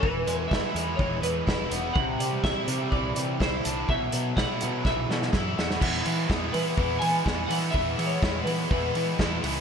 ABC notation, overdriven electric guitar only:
X:1
M:4/4
L:1/8
Q:1/4=124
K:E
V:1 name="Overdriven electric guitar" clef=bass
E, G, E G, E, G, E B, | =C, =G, E G, E, G, E =D | B,, F, E F, E, F, E B, | [E,G,B,E] [E,G,B,E] [E,G,B,E] [E,G,B,E] [E,G,B,E] [E,G,B,E] [E,G,B,E] [E,G,B,E] |
[E,G,B,E] [E,G,B,E] [E,G,B,E] [E,G,B,E] [E,G,B,E] [E,G,B,E] [E,G,B,E] [E,G,B,E] |]